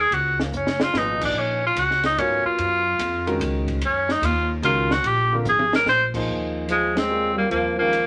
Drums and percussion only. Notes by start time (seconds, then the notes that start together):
0.12 ride
0.40 snare
0.53 hi-hat pedal
0.67 snare
0.80 snare
0.94 snare
1.21 kick, crash
1.76 hi-hat pedal, ride
1.91 snare
2.03 snare, ride
2.18 ride
2.58 ride
2.99 hi-hat pedal, ride
3.27 ride
3.41 hi-hat pedal, ride
3.68 kick, ride
3.81 ride
4.09 snare
4.23 hi-hat pedal, ride
4.63 ride
4.91 snare
5.04 ride
5.45 hi-hat pedal, mid tom
5.59 mid tom
5.73 snare
5.86 snare
6.14 kick, crash
6.69 hi-hat pedal, ride
6.97 snare, ride
7.51 ride
7.93 hi-hat pedal, ride